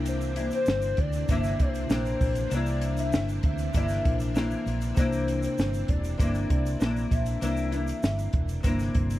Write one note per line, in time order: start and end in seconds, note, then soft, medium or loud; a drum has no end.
0.00 0.49 C2 medium
0.00 0.38 C3 medium
0.00 9.19 C3 medium
0.00 9.19 E3 medium
0.00 0.38 A#3 medium
0.00 9.19 C4 medium
0.00 0.37 D4 medium
0.00 9.19 D4 medium
0.00 0.36 E4 medium
0.06 0.50 C5 loud
0.06 closed hi-hat medium
0.06 shaker medium
0.21 closed hi-hat soft
0.21 shaker medium
0.36 1.30 D4 soft
0.36 1.32 E4 medium
0.36 closed hi-hat medium
0.36 shaker soft
0.40 1.29 A#3 soft
0.51 1.01 C5 loud
0.51 closed hi-hat medium
0.51 shaker soft
0.66 0.92 G1 loud
0.66 snare loud
0.66 shaker medium
0.82 closed hi-hat soft
0.82 shaker soft
0.97 1.23 D2 medium
0.97 1.30 D5 loud
0.97 kick loud
0.97 closed hi-hat medium
1.13 closed hi-hat medium
1.13 shaker soft
1.28 1.54 G1 loud
1.28 1.88 C3 medium
1.28 1.90 A#3 medium
1.28 1.91 D4 medium
1.28 1.93 E4 medium
1.28 1.62 E5 loud
1.28 kick loud
1.28 closed hi-hat medium
1.28 shaker medium
1.44 snare soft
1.44 shaker soft
1.59 1.84 C2 medium
1.59 2.56 C5 loud
1.59 kick loud
1.59 closed hi-hat medium
1.75 closed hi-hat medium
1.75 shaker medium
1.89 2.15 A#1 medium
1.89 2.49 C3 medium
1.89 2.52 A#3 medium
1.89 2.53 D4 medium
1.89 2.56 E4 medium
1.89 snare loud
1.89 shaker medium
2.05 closed hi-hat soft
2.05 shaker soft
2.21 2.45 A#1 loud
2.21 kick medium
2.21 open hi-hat medium
2.21 shaker soft
2.35 closed hi-hat medium
2.35 shaker medium
2.50 3.15 C2 loud
2.50 3.73 C3 medium
2.50 3.74 A#3 medium
2.50 3.01 D5 loud
2.50 closed hi-hat medium
2.50 shaker medium
2.54 3.75 D4 medium
2.54 3.77 E4 medium
2.66 shaker medium
2.81 closed hi-hat medium
2.81 shaker soft
2.97 3.43 E5 loud
2.97 closed hi-hat medium
2.97 shaker medium
3.13 3.38 G1 loud
3.13 snare loud
3.13 shaker medium
3.28 closed hi-hat soft
3.28 shaker soft
3.43 3.68 D2 medium
3.43 4.62 E5 loud
3.43 kick loud
3.43 closed hi-hat medium
3.58 closed hi-hat soft
3.58 shaker soft
3.74 3.99 G1 loud
3.74 4.33 C3 medium
3.74 4.35 A#3 medium
3.74 4.36 D4 medium
3.74 4.37 E4 medium
3.74 kick medium
3.74 closed hi-hat loud
3.74 shaker medium
3.89 snare soft
3.89 closed hi-hat soft
3.89 shaker soft
4.05 4.54 A#1 loud
4.05 kick loud
4.05 closed hi-hat medium
4.20 closed hi-hat medium
4.20 shaker soft
4.34 4.93 C3 medium
4.34 4.96 A#3 medium
4.34 4.98 D4 medium
4.34 5.00 E4 medium
4.34 snare loud
4.34 shaker medium
4.51 shaker soft
4.66 4.91 A#1 loud
4.66 closed hi-hat medium
4.66 shaker soft
4.81 closed hi-hat medium
4.81 shaker medium
4.95 5.46 C2 loud
4.95 6.16 C3 medium
4.95 6.18 A#3 medium
4.95 5.39 C5 loud
4.95 kick loud
4.95 closed hi-hat loud
4.95 shaker medium
4.99 6.19 D4 medium
4.99 6.21 E4 medium
5.13 shaker medium
5.28 closed hi-hat medium
5.28 shaker soft
5.43 5.90 C5 medium
5.43 closed hi-hat medium
5.43 shaker medium
5.58 5.83 G1 medium
5.58 snare loud
5.58 shaker medium
5.74 closed hi-hat soft
5.74 shaker soft
5.88 6.13 E1 medium
5.88 6.19 D5 loud
5.88 kick loud
5.88 closed hi-hat medium
6.04 closed hi-hat medium
6.04 shaker soft
6.18 6.44 G1 medium
6.18 6.79 C3 medium
6.18 6.80 A#3 medium
6.18 6.81 D4 medium
6.18 6.83 E4 medium
6.18 7.14 D5 loud
6.18 kick loud
6.18 closed hi-hat medium
6.18 shaker medium
6.35 closed hi-hat soft
6.35 shaker soft
6.50 6.74 C2 medium
6.50 kick loud
6.50 closed hi-hat medium
6.66 closed hi-hat soft
6.66 shaker medium
6.80 7.05 A#1 loud
6.80 7.40 C3 medium
6.80 7.41 A#3 medium
6.80 7.42 D4 medium
6.80 7.44 E4 medium
6.80 snare loud
6.80 shaker medium
6.96 closed hi-hat soft
6.96 shaker soft
7.11 7.36 A#1 medium
7.11 9.19 E5 loud
7.11 kick medium
7.11 closed hi-hat medium
7.11 shaker soft
7.26 closed hi-hat medium
7.26 shaker medium
7.41 7.91 C2 loud
7.41 7.72 C3 medium
7.41 7.73 A#3 medium
7.41 7.72 D4 medium
7.41 7.70 E4 loud
7.41 closed hi-hat loud
7.41 shaker medium
7.57 shaker medium
7.71 8.64 A#3 soft
7.71 8.64 D4 soft
7.71 8.66 E4 medium
7.71 closed hi-hat medium
7.71 shaker soft
7.87 closed hi-hat medium
7.87 shaker medium
8.03 8.28 G1 loud
8.03 snare loud
8.03 shaker medium
8.19 closed hi-hat soft
8.19 shaker medium
8.33 8.58 E1 medium
8.33 kick loud
8.33 closed hi-hat medium
8.49 closed hi-hat soft
8.49 shaker soft
8.63 8.89 G1 loud
8.63 9.19 C3 medium
8.63 9.19 A#3 medium
8.63 9.19 D4 medium
8.63 9.19 E4 medium
8.63 kick loud
8.63 closed hi-hat medium
8.63 shaker medium
8.79 snare soft
8.79 closed hi-hat soft
8.79 shaker soft
8.95 9.19 G1 medium
8.95 kick loud
8.95 closed hi-hat medium
9.10 closed hi-hat medium
9.10 shaker medium